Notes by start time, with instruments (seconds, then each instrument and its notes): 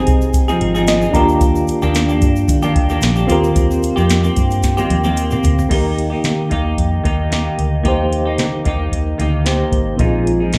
Already playing: clean electric guitar C4 D#4 G#4, reed electric piano D#4 G4 G#4 C5
0.07 fingered electric bass C2, kick, closed hi-hat, shaker
0.21 shaker
0.33 kick, closed hi-hat, shaker
0.48 clean electric guitar F3 C4 D#4 G#4, shaker
0.61 fingered electric bass G#1, closed hi-hat
0.75 clean electric guitar F3 C4 D#4 G#4, shaker
0.87 reed electric piano D#5, snare, closed hi-hat, shaker
1.01 clean electric guitar C4 D#4 G#4, shaker
1.11 fingered electric bass D#2, clean electric guitar D#3 A#3 D4, reed electric piano D4 F4 G4 A#5, kick, closed hi-hat, shaker
1.16 clean electric guitar G4, reed electric piano A#4
1.29 shaker
1.41 kick, closed hi-hat, shaker
1.55 shaker
1.67 closed hi-hat, shaker
1.82 fingered electric bass D#2, clean electric guitar D#3 A#3 D4 G4, shaker
1.95 snare, closed hi-hat, shaker
2.09 clean electric guitar A#3 D4 G4, shaker
2.22 fingered electric bass G2, kick, closed hi-hat, shaker
2.36 shaker
2.48 fingered electric bass D#3, kick, closed hi-hat, shaker
2.62 clean electric guitar D#3 A#3 D4 G4, shaker
2.76 fingered electric bass D#2, kick, closed hi-hat
2.89 clean electric guitar D#3 A#3 D4 G4, shaker
3.01 fingered electric bass A#1, snare, closed hi-hat, shaker
3.16 clean electric guitar A#3 D4 G4, shaker
3.27 fingered electric bass D#2, clean electric guitar D#3 A#3 C4 G4, reed electric piano C4 F4 G4, closed hi-hat, shaker
3.32 reed electric piano A#4
3.44 shaker
3.56 fingered electric bass D#2, kick, closed hi-hat, shaker
3.71 shaker
3.83 closed hi-hat, shaker
3.96 fingered electric bass F2, clean electric guitar D#3 A#3 C4 G4, shaker
4.10 snare, closed hi-hat, shaker
4.23 clean electric guitar A#3 C4 G4, shaker
4.36 fingered electric bass G2, kick, closed hi-hat, shaker
4.51 closed hi-hat, shaker
4.63 kick, snare, closed hi-hat, shaker
4.77 clean electric guitar D#3 A#3 C4 G4, shaker
4.90 fingered electric bass D#2, closed hi-hat, high tom
5.04 clean electric guitar D#3 A#3 C4 G4, high tom, shaker
5.17 closed hi-hat, shaker
5.31 clean electric guitar A#3 C4 G4, mid tom, shaker
5.43 fingered electric bass D2, closed hi-hat, floor tom, shaker
5.59 floor tom, shaker
5.69 fingered electric bass D#2, clean electric guitar D#3 A#3 D#4 G4, reed electric piano A#3 D#4 G4, kick, closed hi-hat, crash
5.74 reed electric piano A#4
5.99 closed hi-hat
6.10 clean electric guitar A#3 D#4 G4
6.24 fingered electric bass D#3, snare, closed hi-hat
6.49 fingered electric bass D#2, clean electric guitar D#3 A#3 D#4 G4, kick, closed hi-hat
6.78 fingered electric bass F2, kick, closed hi-hat
7.04 fingered electric bass D#2, clean electric guitar D#3 A#3 D#4 G4, kick, closed hi-hat
7.30 clean electric guitar D#3 A#3 D#4 G4, snare, closed hi-hat
7.58 fingered electric bass D2, closed hi-hat
7.83 fingered electric bass D#2, clean electric guitar D#3 A#3 D#4 G4, reed electric piano A#3 D#4 G4, kick, closed hi-hat
7.88 reed electric piano C5
8.13 closed hi-hat
8.25 clean electric guitar A#3 D#4 G4
8.38 fingered electric bass D#3, snare, closed hi-hat
8.65 fingered electric bass D#2, clean electric guitar D#3 A#3 D#4 G4, kick, closed hi-hat
8.92 fingered electric bass D#2, kick, closed hi-hat
9.18 fingered electric bass D2, clean electric guitar D#3 A#3 D#4 G4, closed hi-hat
9.45 clean electric guitar D#3 A#3 D#4 G4, reed electric piano A#3 D#4 G4 C5, snare, closed hi-hat
9.72 fingered electric bass G#1, kick, closed hi-hat
9.97 fingered electric bass A#1, clean electric guitar A#2 F3 G#3 D#4, reed electric piano C4 D#4 F4, kick, closed hi-hat
10.02 reed electric piano G#4
10.27 closed hi-hat
10.40 clean electric guitar F3 G#3 D#4
10.53 fingered electric bass A#2, snare, closed hi-hat